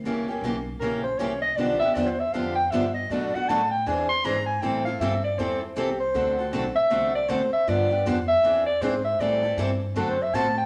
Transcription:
X:1
M:4/4
L:1/16
Q:"Swing" 1/4=158
K:Am
V:1 name="Soprano saxophone"
z8 ^A2 c2 ^c2 _e2 | d2 e2 (3d2 c2 e2 f2 g2 e2 _e2 | d2 ^f2 a2 g2 ^g2 ^b2 _b2 g2 | g2 f2 e2 d2 c2 E2 G2 c2- |
c4 z2 e4 d2 c2 e2 | d4 z2 e4 d2 ^B2 e2 | d4 z4 (3A2 c2 e2 a2 g2 |]
V:2 name="Steel-string acoustic guitar"
[^C,E,^A,^CG]2 [A,CG]2 [C,E,A,CG] z3 [C,E,A,CG]2 z2 [C,E,A,CG] z3 | [D,F,B,DG]2 [B,DG]2 [D,F,B,DG] z3 [D,F,B,DG]2 z2 [D,F,B,DG] z3 | [B,,^F,A,D^F]2 [A,DF]2 [B,,F,A,DF] z3 [E,^B,D^G]2 z2 [E,B,DG] z3 | [E,G,CEA]2 [CEA]2 [E,G,CEA] z3 [E,G,CEA]2 z2 [E,G,CEA] z3 |
[D,A,C^FA]2 [CFA]2 [D,A,CFA] z3 [D,A,CFA]2 z2 [D,A,CFA] z3 | [D,F,B,DG]2 [B,DG]2 [D,F,B,DG] z3 [E,^B,D^G]2 z2 [E,B,DG] z3 | [E,G,CEA]2 [CEA]2 [E,G,CEA] z3 [D,A,C^FA]2 z2 [D,A,CFA] z3 |]
V:3 name="Steel-string acoustic guitar"
[^C,G,^A,EG]2 z2 [C,G,A,EG] z3 [C,G,A,EG]2 z2 [C,G,A,EG] z3 | [D,F,B,DG]2 z2 [D,F,B,DG] z3 [D,F,B,DG]2 z2 [D,F,B,DG] z3 | [B,,^F,A,D^FB]2 z2 [B,,F,A,DFB] z3 [E,^B,D^G^B]2 z2 [E,B,DGB] z3 | [E,G,CEA]2 z2 [E,G,CEA] z3 [E,G,CEA]2 z2 [E,G,CEA] z3 |
[D,A,C^FA]2 z2 [D,A,CFA] z3 [D,A,CFA]2 z2 [D,A,CFA] z3 | [D,F,B,DG]2 z2 [D,F,B,DG] z3 [E,^B,D^G^B]2 z2 [E,B,DGB] z3 | [E,G,CEA]2 z2 [E,G,CEA] z3 [D,A,C^FA]2 z2 [D,A,CFA] z3 |]
V:4 name="Upright bass" clef=bass
^C,,4 B,,,4 ^A,,,4 =C,,4 | B,,,2 z2 E,,4 F,,4 G,,4 | B,,2 z2 A,,4 E,,4 ^G,,4 | A,,4 G,,4 E,,4 C,,4 |
D,,4 B,,,2 z2 C,,4 D,,2 z2 | G,,4 F,,4 E,,4 ^G,,4 | A,,4 G,,4 ^F,,4 A,,4 |]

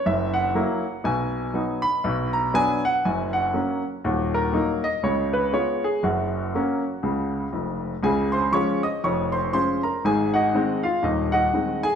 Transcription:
X:1
M:4/4
L:1/8
Q:"Swing" 1/4=120
K:F#
V:1 name="Grand piano"
=e f3 g3 b- | b a g f g f2 z | F A2 d c B c G | F6 z2 |
[K:Db] [Aa] [cc'] [dd'] [ee'] [dd'] [cc'] [cc'] [Bb] | [Aa] [Geg]2 [Ff] [Ee] [Geg]2 [Aa] |]
V:2 name="Grand piano" clef=bass
[F,,,F,,]2 [F,A,=E]2 [B,,,B,,]2 [F,B,D]2 | [B,,,B,,]2 [F,B,=D]2 [F,,,F,,]2 [F,A,C]2 | [D,,,D,,]2 [F,A,D]2 [C,,C,]2 [G,B,E]2 | [F,,,F,,]2 [F,A,C]2 [C,,C,]2 [E,,,E,,]2 |
[K:Db] [D,,D,]2 [F,A,D]2 [F,,,F,,]2 [F,A,D]2 | [A,,,A,,]2 [E,A,C]2 [E,,,E,,]2 [E,A,C]2 |]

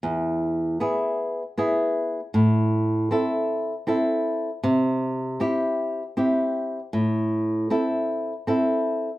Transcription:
X:1
M:3/4
L:1/8
Q:1/4=78
K:Am
V:1 name="Nylon-string guitar"
E,,2 [B,E^G]2 [B,EG]2 | A,,2 [CEA]2 [CEA]2 | C,2 [CEG]2 [CEG]2 | A,,2 [CEA]2 [CEA]2 |]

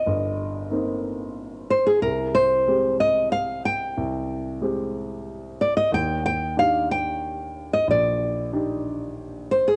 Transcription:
X:1
M:3/4
L:1/16
Q:1/4=92
K:Ablyd
V:1 name="Nylon-string guitar"
e6 z4 c A | B2 c4 e2 f2 g2- | g6 z4 d e | g2 g2 f2 g4- g e |
d4 z6 c A |]
V:2 name="Grand piano"
[G,,,B,CE]4 [B,CE]8 | C,,4 [A,CG]8 | C,,4 [A,CG]8 | E,,4 [DEG]8 |
B,,,4 [DEG]8 |]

